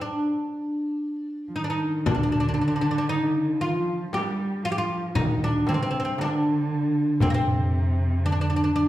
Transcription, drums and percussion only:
2.06 frame drum, darbuka dum
2.58 darbuka ka
3.61 darbuka ka
4.13 darbuka tek, frame drum
5.15 frame drum, darbuka dum
5.67 darbuka tek, frame drum
6.18 darbuka tek, frame drum
6.44 darbuka ka
6.70 darbuka ka
7.20 darbuka dum, frame drum
7.73 darbuka ka

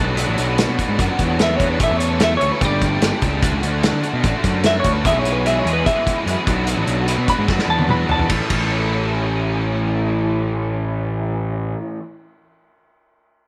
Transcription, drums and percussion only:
0.17 closed hi-hat
0.38 closed hi-hat
0.58 snare, closed hi-hat
0.79 kick, closed hi-hat
0.99 kick, closed hi-hat
1.19 kick, closed hi-hat
1.39 snare, closed hi-hat
1.60 kick, closed hi-hat
1.80 kick, closed hi-hat
2.00 closed hi-hat
2.20 snare, closed hi-hat
2.41 closed hi-hat
2.61 kick, closed hi-hat
2.82 kick, closed hi-hat
3.02 snare, closed hi-hat
3.22 kick, closed hi-hat
3.43 kick, closed hi-hat
3.63 closed hi-hat
3.83 snare, closed hi-hat
4.04 closed hi-hat
4.24 kick, closed hi-hat
4.44 kick, closed hi-hat
4.64 snare, closed hi-hat
4.84 kick, closed hi-hat
5.05 kick, closed hi-hat
5.25 closed hi-hat
5.46 closed hi-hat
5.67 closed hi-hat
5.86 kick, closed hi-hat
6.07 kick, closed hi-hat
6.27 closed hi-hat
6.47 kick, closed hi-hat
6.67 closed hi-hat
6.87 closed hi-hat
7.08 closed hi-hat
7.28 kick, closed hi-hat
7.48 kick, snare
7.59 snare
7.79 high tom
7.89 mid tom
8.09 floor tom
8.19 floor tom
8.30 kick, ride
8.50 kick, ride

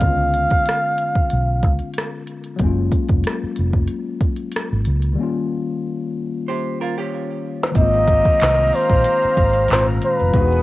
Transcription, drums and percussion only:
0.01 kick, closed hi-hat
0.34 closed hi-hat
0.50 kick, closed hi-hat
0.66 cross-stick, closed hi-hat
0.98 closed hi-hat
1.15 kick
1.30 closed hi-hat
1.63 kick, closed hi-hat
1.79 closed hi-hat
1.94 closed hi-hat
1.98 cross-stick
2.27 closed hi-hat
2.44 closed hi-hat
2.59 kick, closed hi-hat
2.92 kick, closed hi-hat
3.09 kick, closed hi-hat
3.24 cross-stick, closed hi-hat
3.56 closed hi-hat
3.73 kick
3.88 closed hi-hat
4.21 kick, closed hi-hat
4.36 closed hi-hat
4.52 closed hi-hat
4.56 cross-stick
4.85 closed hi-hat
5.02 closed hi-hat
7.63 snare
7.75 kick, closed hi-hat, maracas
7.93 maracas
8.07 kick, closed hi-hat, maracas
8.25 kick, maracas
8.40 finger snap, snare, clap, closed hi-hat, maracas
8.57 maracas
8.73 open hi-hat
8.90 kick, maracas
9.04 closed hi-hat, maracas
9.23 maracas
9.37 kick, closed hi-hat, maracas
9.53 closed hi-hat, maracas
9.68 finger snap, clap, closed hi-hat, maracas
9.73 snare
9.87 maracas
10.02 closed hi-hat, maracas
10.20 maracas
10.33 kick, closed hi-hat, maracas
10.51 maracas

